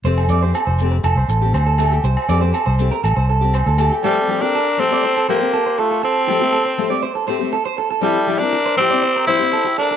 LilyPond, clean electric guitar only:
\new Staff \with { instrumentName = "Clean electric guitar" } { \time 4/4 \key f \major \tempo 4 = 120 c''8 d''16 c''16 a'16 c''8 r16 a'16 c''16 a'8 c''16 a'16 a'16 g'16 | c''8 d''16 c''16 a'16 c''8 bes'16 a'16 c''16 a'8 c''16 a'16 a'16 g'16 | a'8 g'16 g'16 a'16 r8 d''16 c''16 a'16 c''8 a'16 c''16 a'16 a'16 | a'8 g'16 g'16 a'16 c''8 d''16 c''16 a'16 c''8 a'16 c''16 a'16 a'16 |
a'8 g'16 r8 c''8 d''16 c''16 bes'16 c''8 a'16 g'16 a'16 a'16 | }